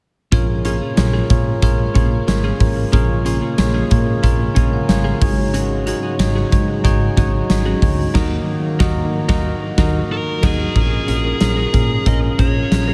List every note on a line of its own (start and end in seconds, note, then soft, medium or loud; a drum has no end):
0.32 0.79 A#1 loud
0.32 1.26 A#2 medium
0.32 8.11 C#3 medium
0.32 8.11 G#3 medium
0.32 5.17 A#3 medium
0.32 0.46 C#4 medium
0.32 0.59 F4 loud
0.32 0.46 F4 medium
0.32 0.59 G#4 medium
0.32 0.47 G#4 medium
0.32 0.59 A#4 medium
0.32 0.59 C#5 loud
0.32 kick loud
0.32 closed hi-hat medium
0.65 0.76 C#4 medium
0.65 0.91 F4 medium
0.65 0.76 F4 medium
0.65 0.91 G#4 medium
0.65 0.77 G#4 medium
0.65 0.91 A#4 medium
0.65 0.91 C#5 medium
0.65 closed hi-hat medium
0.81 0.93 C#4 medium
0.81 0.93 F4 medium
0.81 0.92 G#4 medium
0.96 1.21 A#1 medium
0.96 1.23 F4 medium
0.96 1.23 G#4 medium
0.96 1.24 A#4 medium
0.96 1.24 C#5 medium
0.96 muted clean electric guitar stroke soft
0.96 snare loud
0.96 closed hi-hat medium
1.13 1.28 C#4 medium
1.13 1.28 F4 medium
1.13 1.28 G#4 medium
1.30 1.54 A#2 medium
1.30 1.56 F4 medium
1.30 1.56 G#4 medium
1.30 1.57 A#4 medium
1.30 1.57 C#5 medium
1.30 kick medium
1.30 closed hi-hat medium
1.46 muted clean electric guitar stroke soft
1.62 1.86 A#1 medium
1.62 1.89 F4 loud
1.62 1.89 G#4 medium
1.62 1.89 A#4 medium
1.62 1.89 C#5 loud
1.62 muted clean electric guitar stroke soft
1.62 kick medium
1.62 closed hi-hat medium
1.78 muted clean electric guitar stroke soft
1.94 2.19 A#1 medium
1.94 2.09 C#4 medium
1.94 2.22 F4 medium
1.94 2.10 F4 medium
1.94 2.22 G#4 medium
1.94 2.10 G#4 medium
1.94 2.22 A#4 medium
1.94 2.22 C#5 medium
1.94 kick medium
1.94 closed hi-hat medium
2.11 muted clean electric guitar stroke soft
2.27 2.51 G#1 medium
2.27 2.54 F4 medium
2.27 2.54 G#4 medium
2.27 2.54 A#4 medium
2.27 2.54 C#5 medium
2.27 muted clean electric guitar stroke soft
2.27 snare medium
2.27 closed hi-hat medium
2.44 2.59 C#4 medium
2.44 2.59 F4 medium
2.44 2.58 G#4 medium
2.60 2.84 A1 medium
2.60 2.86 F4 medium
2.60 2.87 G#4 medium
2.60 2.87 A#4 medium
2.60 2.87 C#5 medium
2.60 muted clean electric guitar stroke soft
2.60 kick medium
2.60 open hi-hat medium
2.76 muted clean electric guitar stroke soft
2.92 3.40 A#1 loud
2.92 3.87 A#2 medium
2.92 3.07 C#4 medium
2.92 3.19 F4 medium
2.92 3.07 F4 medium
2.92 3.19 G#4 medium
2.92 3.08 G#4 medium
2.92 3.19 A#4 medium
2.92 3.20 C#5 loud
2.92 kick loud
2.92 closed hi-hat medium
3.25 3.36 C#4 medium
3.25 3.52 F4 medium
3.25 3.37 F4 medium
3.25 3.52 G#4 medium
3.25 3.37 G#4 medium
3.25 3.52 A#4 medium
3.25 3.52 C#5 medium
3.25 closed hi-hat medium
3.42 3.54 C#4 soft
3.42 3.53 F4 medium
3.42 3.53 G#4 medium
3.58 3.82 A#1 loud
3.58 3.84 F4 medium
3.58 3.85 G#4 medium
3.58 3.85 A#4 medium
3.58 3.85 C#5 medium
3.58 muted clean electric guitar stroke soft
3.58 snare loud
3.58 closed hi-hat medium
3.74 3.89 C#4 medium
3.74 3.89 F4 medium
3.74 3.89 G#4 medium
3.90 4.15 A#2 medium
3.90 4.17 F4 medium
3.90 4.17 G#4 medium
3.90 4.17 A#4 medium
3.90 4.18 C#5 medium
3.90 muted clean electric guitar stroke soft
3.90 kick medium
3.90 closed hi-hat medium
4.07 muted clean electric guitar stroke soft
4.23 4.47 A#1 medium
4.23 4.49 F4 loud
4.23 4.50 G#4 medium
4.23 4.50 A#4 medium
4.23 4.50 C#5 loud
4.23 muted clean electric guitar stroke soft
4.23 kick medium
4.23 closed hi-hat medium
4.39 muted clean electric guitar stroke soft
4.55 4.80 A#1 medium
4.55 4.70 C#4 medium
4.55 4.70 F4 medium
4.55 4.82 F4 medium
4.55 4.70 G#4 medium
4.55 4.83 G#4 medium
4.55 4.83 A#4 medium
4.55 4.83 C#5 medium
4.55 4.72 A#5 medium
4.55 kick medium
4.55 closed hi-hat medium
4.72 4.88 F#5 medium
4.72 muted clean electric guitar stroke soft
4.88 5.12 G#1 medium
4.88 5.15 F4 medium
4.88 5.15 G#4 medium
4.88 5.15 A#4 medium
4.88 5.16 C#5 medium
4.88 5.19 F5 medium
4.88 muted clean electric guitar stroke soft
4.88 snare medium
4.88 closed hi-hat medium
5.04 5.19 C#4 medium
5.04 5.19 F4 medium
5.04 5.19 G#4 medium
5.21 5.92 G#1 medium
5.21 6.16 G#2 medium
5.21 10.72 F#3 medium
5.21 5.74 D#4 medium
5.21 5.74 F#4 medium
5.21 5.74 G#4 medium
5.21 5.75 C#5 medium
5.21 muted clean electric guitar stroke soft
5.21 kick loud
5.21 open hi-hat medium
5.37 muted clean electric guitar stroke soft
5.54 5.68 C#4 medium
5.54 5.68 F#4 medium
5.54 5.69 G#4 medium
5.54 closed hi-hat medium
5.86 5.98 C#4 medium
5.86 6.13 D#4 medium
5.86 5.98 F#4 medium
5.86 6.13 F#4 medium
5.86 5.98 G#4 medium
5.86 6.14 G#4 medium
5.86 6.14 C#5 medium
5.86 closed hi-hat medium
6.03 6.15 C#4 medium
6.03 6.14 F#4 medium
6.03 6.14 G#4 medium
6.19 6.43 G#1 loud
6.19 6.46 D#4 medium
6.19 6.46 F#4 medium
6.19 6.46 G#4 medium
6.19 6.46 C#5 medium
6.19 muted clean electric guitar stroke soft
6.19 snare loud
6.19 closed hi-hat medium
6.36 6.50 C#4 medium
6.36 6.50 F#4 medium
6.36 6.50 G#4 medium
6.51 6.86 G#2 medium
6.51 6.78 D#4 medium
6.51 6.78 F#4 medium
6.51 6.78 G#4 medium
6.51 6.78 C#5 medium
6.51 muted clean electric guitar stroke soft
6.51 kick medium
6.51 closed hi-hat medium
6.68 muted clean electric guitar stroke soft
6.84 7.08 G#1 medium
6.84 7.10 D#4 loud
6.84 7.11 F#4 medium
6.84 7.11 G#4 medium
6.84 7.11 C#5 loud
6.84 muted clean electric guitar stroke soft
6.84 kick medium
6.84 closed hi-hat medium
7.01 muted clean electric guitar stroke soft
7.17 7.41 G#1 loud
7.17 7.31 C#4 medium
7.17 7.43 D#4 medium
7.17 7.43 F#4 medium
7.17 7.31 F#4 medium
7.17 7.44 G#4 medium
7.17 7.32 G#4 medium
7.17 7.44 C#5 medium
7.17 kick medium
7.17 closed hi-hat medium
7.34 muted clean electric guitar stroke soft
7.50 7.73 G#1 medium
7.50 7.76 D#4 medium
7.50 7.76 F#4 medium
7.50 7.76 G#4 medium
7.50 7.77 C#5 medium
7.50 muted clean electric guitar stroke soft
7.50 snare loud
7.50 closed hi-hat medium
7.66 7.81 C#4 medium
7.66 7.80 F#4 medium
7.66 7.80 G#4 medium
7.82 8.06 D2 medium
7.82 8.08 D#4 medium
7.82 8.09 F#4 medium
7.82 8.09 G#4 medium
7.82 8.09 C#5 medium
7.82 kick medium
7.82 open hi-hat medium
7.98 muted clean electric guitar stroke soft
8.14 8.37 D#2 medium
8.14 8.37 D#3 medium
8.14 10.73 D#3 medium
8.14 10.73 A#3 medium
8.14 8.37 D#4 medium
8.14 8.37 F#4 medium
8.14 8.37 A#4 medium
8.14 8.38 A#4 medium
8.14 8.37 D#5 medium
8.14 kick loud
8.14 snare medium
8.14 crash medium
8.79 9.02 D#2 loud
8.79 9.02 D#4 loud
8.79 9.03 D#4 medium
8.79 9.02 F#4 medium
8.79 9.02 A#4 medium
8.79 9.03 D#5 loud
8.79 kick loud
8.79 snare loud
9.28 9.51 D#2 medium
9.28 9.51 D#4 medium
9.28 9.52 D#4 medium
9.28 9.51 F#4 medium
9.28 9.51 F#4 loud
9.28 9.51 A#4 medium
9.28 9.52 A#4 medium
9.28 9.52 D#5 loud
9.28 kick medium
9.28 snare loud
9.78 10.00 D#2 medium
9.78 10.00 D#4 medium
9.78 10.00 F#4 medium
9.78 10.01 A#4 medium
9.78 10.01 D#5 medium
9.78 kick loud
9.78 snare loud
10.12 10.45 A#4 medium
10.43 10.65 D#2 loud
10.43 10.65 D#4 loud
10.43 10.66 D#4 medium
10.43 10.65 F#4 medium
10.43 10.66 F#4 medium
10.43 12.08 G#4 medium
10.43 10.65 A#4 medium
10.43 10.66 A#4 medium
10.43 10.66 D#5 medium
10.43 kick loud
10.43 snare loud
10.43 crash medium
10.75 10.99 A#1 medium
10.75 11.70 A#2 medium
10.75 10.90 C#4 medium
10.75 11.02 C#4 medium
10.75 11.02 F4 medium
10.75 10.90 G#4 medium
10.75 11.02 G#4 medium
10.75 10.90 A#4 medium
10.75 11.03 A#4 medium
10.75 kick medium
10.75 crash medium
11.08 11.32 A#1 medium
11.08 11.19 C#4 medium
11.08 11.34 C#4 medium
11.08 11.34 F4 medium
11.08 11.35 G#4 medium
11.08 11.19 G#4 medium
11.08 11.35 A#4 medium
11.08 11.20 A#4 medium
11.08 closed hi-hat medium
11.24 11.36 C#4 soft
11.24 11.36 G#4 soft
11.24 11.36 A#4 medium
11.40 11.65 A#1 medium
11.40 11.67 C#4 medium
11.40 11.67 F4 medium
11.40 11.67 G#4 medium
11.40 11.67 A#4 medium
11.40 muted clean electric guitar stroke soft
11.40 snare loud
11.40 closed hi-hat medium
11.57 11.72 C#4 medium
11.57 11.72 G#4 medium
11.57 11.71 A#4 medium
11.73 11.97 A#2 medium
11.73 12.00 C#4 medium
11.73 12.00 F4 medium
11.73 12.00 G#4 medium
11.73 12.00 A#4 medium
11.73 muted clean electric guitar stroke soft
11.73 kick medium
11.73 closed hi-hat medium
11.90 muted clean electric guitar stroke soft
12.06 12.30 A#1 medium
12.06 12.32 C#4 medium
12.06 12.32 F4 medium
12.06 12.33 G#4 medium
12.06 12.33 A#4 medium
12.06 12.17 D#5 medium
12.06 muted clean electric guitar stroke soft
12.06 kick medium
12.06 closed hi-hat medium
12.23 muted clean electric guitar stroke soft
12.38 12.62 A#1 medium
12.38 12.65 C#4 medium
12.38 12.53 C#4 medium
12.38 12.65 F4 medium
12.38 12.65 G#4 medium
12.38 12.54 G#4 medium
12.38 12.65 A#4 medium
12.38 12.54 A#4 medium
12.38 12.94 C#5 medium
12.38 kick medium
12.38 closed hi-hat medium
12.56 muted clean electric guitar stroke soft
12.71 12.94 A#1 medium
12.71 12.94 C#4 medium
12.71 12.94 F4 medium
12.71 12.94 G#4 medium
12.71 12.94 A#4 medium
12.71 muted clean electric guitar stroke soft
12.71 snare medium
12.71 closed hi-hat medium
12.88 12.94 C#4 medium
12.88 12.94 G#4 medium
12.88 12.94 A#4 medium